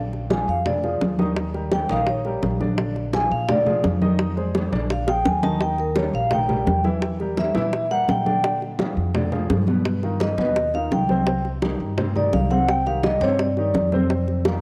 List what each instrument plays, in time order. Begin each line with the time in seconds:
Already playing: upright bass A#1, grand piano D3 D4 D5
0.13 high bongo, high conga
0.30 grand piano F3 F4 G#4, vibraphone G#5, high bongo, high conga
0.48 upright bass F2, vibraphone F5, high conga
0.66 grand piano D3 D4 D5, vibraphone D5, high bongo, high conga, low conga
0.83 grand piano F3 F4 G#4, high bongo, high conga
1.01 upright bass D#2, high bongo, low bongo, high conga
1.19 grand piano D#3 D#4 D#5, high bongo, high conga
1.36 high bongo, high conga
1.54 grand piano G3 G4 A#4, high bongo, high conga
1.72 vibraphone G5, high bongo, high conga
1.90 upright bass A#1, grand piano D#3 D#4 D#5, vibraphone F5, high conga
2.07 vibraphone C#5, high bongo, high conga
2.25 grand piano G3 G4 A#4, high bongo, high conga
2.42 upright bass A#1, high bongo, low bongo, high conga
2.60 grand piano D3 D4 D5, high bongo, high conga
2.78 grand piano D3 D4 D5, high bongo, high conga
2.96 high bongo, high conga
3.13 grand piano F3 F4 G#4, vibraphone G#5, high bongo, high conga
3.31 upright bass A#2, vibraphone F5, high conga
3.48 grand piano D3 D4 D5, vibraphone D5, high bongo, high conga, low conga
3.66 grand piano F3 F4 G#4, high bongo, high conga, low conga
3.84 upright bass F2, high bongo, low bongo, high conga
4.02 grand piano D#3 D#4 D#5, high bongo, high conga
4.19 high bongo, high conga
4.37 grand piano G#3 G#4 C5, high bongo, high conga
4.55 high bongo, high conga
4.72 upright bass A#1, grand piano D3 D4 D5, high conga
4.90 vibraphone F5, high bongo, high conga
5.07 grand piano F3 F4 G#4, vibraphone G5, high bongo
5.25 upright bass D#2, vibraphone G#5, low bongo, high conga
5.43 grand piano D#3 D#4 D#5, vibraphone A5, low bongo, high conga
5.61 grand piano D#3 D#4 D#5, vibraphone G5, high bongo, high conga
5.78 vibraphone A#4, high bongo, high conga
5.96 grand piano G3 G4 A#4, vibraphone C#5, high bongo, high conga
6.13 upright bass A#1, vibraphone F5, high conga
6.31 grand piano D#3 D#4 D#5, vibraphone G5, high bongo, high conga, low conga
6.48 grand piano G3 G4 A#4, high bongo, high conga, low conga
6.66 upright bass E2, high bongo, low bongo, high conga
6.84 grand piano E3 E4 E5, high bongo, high conga
7.02 high bongo, high conga
7.20 grand piano G3 G4 A#4, high bongo, high conga
7.37 vibraphone E5, high bongo, high conga
7.55 upright bass A#2, grand piano E3 E4 E5, high conga
7.72 high bongo, high conga
7.91 grand piano G3 G4 A#4, vibraphone F#5, high bongo, high conga
8.08 upright bass A#2, vibraphone G5, high bongo, low bongo, high conga
8.26 grand piano D3 D4 D5, high bongo, high conga
8.44 grand piano D3 D4 D5, high bongo, high conga
8.61 high bongo, high conga
8.79 grand piano F3 F4 G#4, high bongo, high conga
8.97 upright bass F2, high conga
9.14 grand piano D3 D4 D5, high bongo, high conga, low conga
9.32 grand piano F3 F4 G#4, high bongo, high conga, low conga
9.49 upright bass G2, high bongo, low bongo, high conga
9.67 grand piano B2 B3 B4, high bongo, high conga
9.85 high bongo, high conga
10.03 grand piano D#3 D#4 F4, high bongo, high conga
10.20 vibraphone D#5, high bongo, high conga
10.38 upright bass D#2, grand piano B2 B3 B4, high conga
10.55 high bongo, high conga
10.74 grand piano D#3 D#4 F4, vibraphone F5, high bongo, high conga
10.91 upright bass C2, vibraphone G5, high bongo, low bongo, high conga
11.09 grand piano C3 C4 C5, high bongo, high conga
11.27 grand piano C3 C4 C5, high bongo, high conga
11.45 high bongo, high conga
11.62 grand piano D#3 D#4 G4, high bongo, high conga
11.80 upright bass G2, high conga
11.97 grand piano C3 C4 C5, high bongo, high conga, low conga
12.15 grand piano D#3 D#4 G4, vibraphone D5, high bongo, high conga, low conga
12.33 upright bass C2, vibraphone F5, high bongo, low bongo, high conga
12.50 grand piano C3 C4 C5, vibraphone F#5, high bongo, high conga
12.68 vibraphone G5, high bongo, high conga
12.86 grand piano D#3 D#4 G4, vibraphone F5, high bongo, high conga
13.03 vibraphone D#5, high bongo, high conga
13.21 upright bass G2, grand piano C3 C4 C5, vibraphone C#5, high conga
13.39 vibraphone D5, high bongo, high conga
13.57 grand piano D#3 D#4 G4, high bongo, high conga
13.74 upright bass F2, high bongo, low bongo, high conga
13.92 grand piano C3 C4 C5, high bongo, high conga
14.10 grand piano C3 C4 C5, high bongo, high conga
14.28 high bongo, high conga
14.45 grand piano D#3 D#4 F4, high bongo, high conga